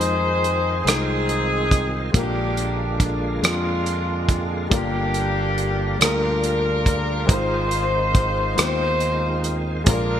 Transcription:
Already playing: fingered electric bass F2, tonewheel organ D#3 G#3 C4 F4, upright piano G#3 C4 D#4 F4 C5, saxophone section D#4 G#4 C5
0.01 closed hi-hat
0.44 closed hi-hat
0.83 fingered electric bass C2, upright piano G#3 C4 D#4 F4 C5, closed hi-hat
0.88 saxophone section C4 D#4 G#4, cross-stick
1.29 closed hi-hat
1.71 kick, closed hi-hat
2.12 fingered electric bass A#1, upright piano A#2 G#3 A#3 C#4 F4, tonewheel organ D3 G#3 A#3 F4, saxophone section D4, kick, closed hi-hat
2.16 saxophone section G4, upright piano A#4
2.21 upright piano D4
2.57 closed hi-hat
3.00 kick, closed hi-hat
3.41 fingered electric bass F2, upright piano G#3 A#3 D4 F4, saxophone section G#3 D4, cross-stick, closed hi-hat
3.45 saxophone section F4, upright piano G4
3.86 closed hi-hat
4.29 kick, closed hi-hat
4.69 fingered electric bass G1, upright piano G2 G3 A#3 D4 F4 A#4, tonewheel organ D3 G3 A#3 F4, kick, closed hi-hat
4.73 saxophone section A#3 D4 G4
5.14 closed hi-hat
5.58 closed hi-hat
5.97 fingered electric bass D2, upright piano G3 A#3 D4 F4, closed hi-hat
6.01 saxophone section D4 F4 A#4, upright piano G#4, cross-stick
6.08 upright piano A#4
6.43 closed hi-hat
6.86 kick, closed hi-hat
7.26 fingered electric bass G#1, upright piano G#2 G#3 C4 D#4 F4 C5, tonewheel organ D#3 G#3 C4 F4, kick, closed hi-hat
7.30 saxophone section D#4 F4 C5
7.71 closed hi-hat
8.15 kick, closed hi-hat
8.55 fingered electric bass D#2, upright piano G#3 B3 D#4 F4 G4, closed hi-hat
8.59 upright piano C4, saxophone section D#4 F4 C5, cross-stick
9.00 closed hi-hat
9.44 closed hi-hat
9.84 fingered electric bass A#1, upright piano A#2 G#3 A#3 C4 F4, tonewheel organ D3 G#3 A#3 F4, saxophone section D4, kick, closed hi-hat
9.88 saxophone section F4 A#4, upright piano A#4
9.93 upright piano D4

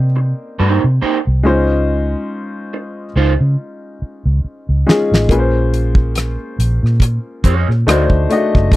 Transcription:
Already playing: upright piano A#3 C4 D#4 G4 B4 C5 D5
0.00 fingered electric bass C3
0.16 muted clean electric guitar stroke
0.59 fingered electric bass G2, clean electric guitar A#3 D#4 G4 C5
0.84 fingered electric bass C3
1.02 clean electric guitar A#3 D#4 G4 C5, muted fingered electric bass stroke
1.27 fingered electric bass C2
1.43 fingered electric bass C#2, upright piano G#3 C#4 D#4 F4 C5
2.73 muted clean electric guitar stroke
3.16 fingered electric bass C#2, clean electric guitar G#3 D#4 F4 C5
3.41 fingered electric bass C#3
4.02 muted fingered electric bass stroke
4.25 fingered electric bass C#2
4.44 muted fingered electric bass stroke
4.69 fingered electric bass C#2
4.87 upright piano G#3 C#4 D#4 F4 G#4, snare
5.12 fingered electric bass A1, snare
5.29 upright piano A#3 C#4 F4 G#4 B4, kick, closed hi-hat
5.39 upright piano C5
5.74 closed hi-hat
5.95 kick
6.15 cross-stick, closed hi-hat
6.59 fingered electric bass A#1, closed hi-hat
6.83 fingered electric bass A#2, cross-stick
7.00 muted clean electric guitar stroke, kick, closed hi-hat
7.44 fingered electric bass F2, clean electric guitar C#4 F4 G#4 C#5, kick, closed hi-hat
7.68 fingered electric bass A#2, cross-stick
7.87 fingered electric bass D2, upright piano A3 D4 D#4 F#4 C5, clean electric guitar D#4 F#4 C5 D5, cross-stick, closed hi-hat
8.10 fingered electric bass D2, kick
8.30 upright piano A3 D4 D#4 F#4 D#5, closed hi-hat
8.55 fingered electric bass F#1, kick, cross-stick
8.72 fingered electric bass G1, upright piano A3 D4, kick, closed hi-hat

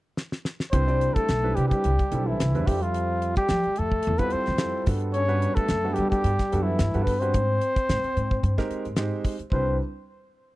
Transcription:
0.17 snare
0.32 snare
0.45 snare
0.60 snare
0.72 upright bass C2, grand piano G3 C4 D4 E4 B4, trombone C4, trumpet C5, kick, closed hi-hat
0.87 grand piano G3 C4 D4 E4 D5, closed hi-hat
1.01 closed hi-hat
1.14 trombone A3, trumpet A4, muted upright bass stroke, kick, closed hi-hat
1.29 upright bass B1, snare, closed hi-hat
1.43 grand piano G3 C4 D4 E4 B4
1.55 upright bass C3, trombone G3, trumpet G4, closed hi-hat
1.68 trombone G3, trumpet G4, kick, closed hi-hat
1.84 upright bass C2, closed hi-hat
1.99 kick, closed hi-hat
2.12 upright bass B1, grand piano G3 C4 D4 E4 A4, closed hi-hat
2.27 trombone E3, trumpet E4
2.40 upright bass C2, snare, closed hi-hat
2.55 upright bass E2, grand piano G3 C4 D4 E4 B4, closed hi-hat
2.67 upright bass F2, trombone G3, grand piano G3 C4 F4 A4 E5, trumpet G4, kick, open hi-hat
2.82 trombone F3, trumpet F4, closed hi-hat
2.94 closed hi-hat
3.22 closed hi-hat
3.36 trombone G3, trumpet G4, kick, closed hi-hat
3.48 upright bass F3, snare, closed hi-hat
3.63 muted upright bass stroke, closed hi-hat
3.76 upright bass F2, trombone A3, trumpet A4, closed hi-hat
3.92 kick
4.03 closed hi-hat
4.07 upright bass E2
4.18 grand piano G3 C4 E4 F4 A4, trombone B3, trumpet B4, kick, closed hi-hat
4.30 trumpet C5, muted upright bass stroke, closed hi-hat
4.34 trombone C4
4.46 upright bass F2, snare, closed hi-hat
4.58 grand piano G3 C4 E4 F4 A4, snare, closed hi-hat
4.86 upright bass G2, grand piano G3 B3 D4 F#4 A4, kick, open hi-hat
5.00 closed hi-hat
5.13 trombone C#4, trumpet C#5, closed hi-hat
5.28 grand piano G3 B3 D4 F#4 B4, closed hi-hat
5.42 closed hi-hat
5.55 trombone A3, trumpet A4, muted upright bass stroke, kick, closed hi-hat
5.68 upright bass F#2, snare, closed hi-hat
5.84 grand piano G3 B3 D4 F#4 A4
5.94 trombone G3, trumpet G4, closed hi-hat
5.98 upright bass G3
6.10 trombone G3, trumpet G4, kick, closed hi-hat
6.24 upright bass G2, closed hi-hat
6.39 kick, snare, closed hi-hat
6.52 upright bass F#2, grand piano G3 B3 D4 F#4 A4, closed hi-hat
6.63 trombone E3, trumpet E4
6.79 upright bass G2, snare, closed hi-hat
6.94 upright bass G2, grand piano G3 B3 D4 F#4 A4, closed hi-hat
7.03 trombone B3, trumpet B4, kick
7.07 open hi-hat
7.19 grand piano G3 B3 D4 F#4 B4, trombone C4, trumpet C5, closed hi-hat
7.34 upright bass G#2, kick, closed hi-hat
7.61 closed hi-hat
7.76 kick, closed hi-hat
7.89 upright bass G#2, snare, closed hi-hat
8.04 muted upright bass stroke, closed hi-hat
8.17 upright bass G#2, closed hi-hat
8.31 kick
8.43 upright bass G2, closed hi-hat
8.58 grand piano G#3 C4 D#4 G4 A#4, kick, snare, closed hi-hat
8.71 muted upright bass stroke, closed hi-hat
8.85 upright bass G#2, closed hi-hat
8.96 grand piano G#3 C4 D#4 G4 C5, snare, closed hi-hat
9.24 kick, open hi-hat
9.39 muted upright bass stroke, closed hi-hat
9.52 upright bass C2, grand piano G3 C4 D4 E4 B4, trombone C4, trumpet C5, kick

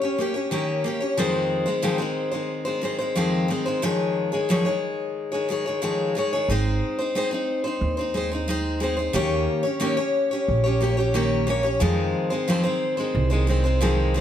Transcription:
0.01 steel-string acoustic guitar C#4 G4 C#5
0.18 steel-string acoustic guitar A#3 C#4 G4 C#5
0.34 steel-string acoustic guitar C#4 G4 C#5
0.51 steel-string acoustic guitar D#3 A#3 C#4 G4 C#5
0.84 steel-string acoustic guitar A#3 C#4 G4 C#5
1.00 steel-string acoustic guitar C#4 G4 C#5
1.17 steel-string acoustic guitar F2 D#3 F3 G#3 C4 C5
1.66 steel-string acoustic guitar D#3 G#3 C4 C5
1.82 steel-string acoustic guitar F2 D#3 F3 G#3 C4 C5
1.98 steel-string acoustic guitar D#3 G#3 C4 C5
2.31 steel-string acoustic guitar D#3 G#3 C4 C5
2.65 steel-string acoustic guitar D#3 G#3 C4 C5
2.81 steel-string acoustic guitar D#3 G#3 C4 C5
2.98 steel-string acoustic guitar D#3 G#3 C4 C5
3.15 steel-string acoustic guitar F2 D#3 F3 G#3 C4 C5
3.48 steel-string acoustic guitar D#3 G#3 C4 C5
3.66 steel-string acoustic guitar D#3 G#3 C4 C5
3.82 steel-string acoustic guitar F2 D#3 F3 G#3 G#4 C#5
4.32 steel-string acoustic guitar D#3 G#3 G#4 C#5
4.49 steel-string acoustic guitar F2 D#3 F3 G#3 G#4 C#5
4.65 steel-string acoustic guitar D#3 G#3 G#4 C#5
5.32 steel-string acoustic guitar D#3 G#3 G#4 C#5
5.49 steel-string acoustic guitar D#3 G#3 G#4 C#5
5.66 steel-string acoustic guitar D#3 G#3 G#4 C#5
5.82 steel-string acoustic guitar F2 D#3 F3 G#3 G#4 C#5
6.15 steel-string acoustic guitar D#3 G#3 G#4 C#5
6.33 steel-string acoustic guitar D#3 G#3 G#4 C#5
6.48 upright bass G#1, steel-string acoustic guitar G#3 C4 D#4 C5
6.99 steel-string acoustic guitar C4 D#4 C5
7.15 steel-string acoustic guitar G#3 C4 D#4 C5
7.31 steel-string acoustic guitar C4 D#4 C5
7.64 steel-string acoustic guitar C4 D#4 C5
7.81 upright bass D#2
7.97 steel-string acoustic guitar C4 D#4 C5
8.14 steel-string acoustic guitar G#3 C4 D#4 C5
8.31 steel-string acoustic guitar C4 D#4 C5
8.48 steel-string acoustic guitar G#3 C4 D#4 C5
8.80 steel-string acoustic guitar G#3 C4 D#4 C5
8.97 steel-string acoustic guitar C4 D#4 C5
9.13 upright bass D#2, steel-string acoustic guitar D#3 A#3 C#4 G4 C#5
9.63 steel-string acoustic guitar C#4 G4 C#5
9.80 steel-string acoustic guitar D#3 A#3 C#4 G4 C#5
9.97 steel-string acoustic guitar C#4 G4 C#5
10.31 steel-string acoustic guitar C#4 G4 C#5
10.48 upright bass A#1
10.64 steel-string acoustic guitar C#4 G4 C#5
10.80 steel-string acoustic guitar A#3 C#4 G4 C#5
10.97 steel-string acoustic guitar C#4 G4 C#5
11.14 steel-string acoustic guitar D#3 A#3 C#4 G4 C#5
11.47 steel-string acoustic guitar A#3 C#4 G4 C#5
11.63 steel-string acoustic guitar C#4 G4 C#5
11.80 steel-string acoustic guitar F2 D#3 F3 G#3 C4 C5, upright bass F2
12.30 steel-string acoustic guitar D#3 G#3 C4 C5
12.48 steel-string acoustic guitar F2 D#3 F3 G#3 C4 C5
12.63 steel-string acoustic guitar D#3 G#3 C4 C5
12.97 steel-string acoustic guitar D#3 G#3 C4 C5
13.15 upright bass C2
13.30 steel-string acoustic guitar D#3 G#3 C4 C5
13.47 steel-string acoustic guitar D#3 G#3 C4 C5
13.64 steel-string acoustic guitar D#3 G#3 C4 C5
13.81 steel-string acoustic guitar F2 D#3 F3 G#3 C4 C5
14.14 steel-string acoustic guitar D#3 G#3 C4 C5

